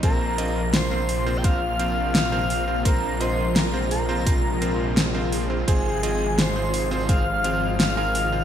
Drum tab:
HH |xxxoxxxo|xxxoxxxo|xxxoxxxo|
SD |--o---o-|--o---o-|--o---o-|
BD |o---o---|o---o---|o---o---|